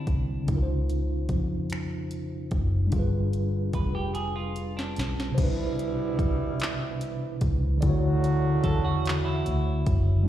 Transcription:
Already playing: tine electric piano D3 C4 D4 E4 C5, clean electric guitar D4
0.07 fingered electric bass C2, kick, closed hi-hat
0.44 tine electric piano C#3 C#4
0.48 fingered electric bass C#2, tine electric piano D#4, kick, closed hi-hat
0.53 tine electric piano F4 A#4
0.62 tine electric piano C5
0.89 closed hi-hat
1.29 fingered electric bass F2, kick, closed hi-hat
1.70 finger snap, closed hi-hat
2.11 closed hi-hat
2.51 fingered electric bass F#1, kick, closed hi-hat
2.87 tine electric piano G3 D4
2.92 fingered electric bass G1, tine electric piano F4, kick, closed hi-hat
2.96 tine electric piano G#4 B4
3.33 closed hi-hat
3.73 fingered electric bass F1, clean electric guitar B4, kick, closed hi-hat
3.95 clean electric guitar G4
4.15 clean electric guitar G#4, closed hi-hat
4.36 clean electric guitar F4
4.56 closed hi-hat
4.77 clean electric guitar D4, snare
4.96 fingered electric bass B1, snare, closed hi-hat
5.20 snare
5.32 tine electric piano C3 C5
5.37 fingered electric bass C2, horn section B2 E3 G3 E4, tine electric piano D4 D#4, kick, closed hi-hat, crash
5.43 tine electric piano E4 B4
5.79 closed hi-hat
6.19 kick, closed hi-hat
6.60 clap, closed hi-hat
7.01 closed hi-hat
7.41 fingered electric bass C#2, kick, closed hi-hat
7.78 tine electric piano D3 D5
7.82 fingered electric bass D2, horn section C#3 F#3 A3 F#4, tine electric piano E4, kick, closed hi-hat
7.87 tine electric piano F#4 C#5
8.24 closed hi-hat
8.64 fingered electric bass E2, clean electric guitar A4, kick, closed hi-hat
8.85 clean electric guitar F#4
9.06 clap, closed hi-hat
9.25 clean electric guitar E4
9.46 fingered electric bass D2, closed hi-hat
9.86 fingered electric bass F#1, kick, closed hi-hat
10.23 tine electric piano G3

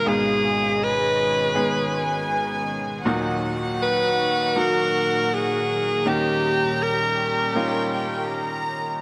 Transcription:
Already playing: string section B2 D#3 G#3 G#4, grand piano G#3 B3 D#4 G#4, violin section F5
0.06 grand piano G#1 G#2 G#3 B3 D#4 G#4, string section C#4, alto saxophone G#4
0.80 alto saxophone B4, violin section D#5
1.55 grand piano G#3 B3 D#4 G#4, violin section G#5
3.04 grand piano D#2 A#2 D#3 F#3 D#4 F#4, string section A#2 F#3 D#4 F#4, violin section F#5
3.83 alto saxophone B4
4.56 grand piano F#3 A#3 D#4 F#4, alto saxophone A#4
5.34 alto saxophone G#4
6.06 grand piano D#2 D#3 A#3 C#4 D#4 G4, string section G3 C#4 G4, alto saxophone G4, violin section A#5
6.83 alto saxophone A#4
7.55 grand piano A#3 C#4 D#4 F4, violin section G5
7.92 violin section G5
8.29 violin section A#5

